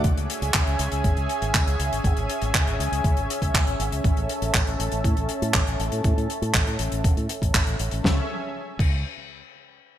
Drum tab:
CC |----------------|----------------|----------------|----------------|
HH |xxxxxxxxxxxxxxxx|xxxxxxxxxxxxxxxx|xxxxxxxxxxxxxxxx|xxxxxxxxxxxxxxxx|
CP |----x-------x---|----x-------x---|----x-------x---|----x-------x---|
SD |----------------|----------------|----------------|----------------|
BD |o---o---o---o---|o---o---o--oo---|o---o---o---o---|o---o---o--oo---|

CC |------x---------|
HH |----------------|
CP |----------------|
SD |o---------------|
BD |o-----o---------|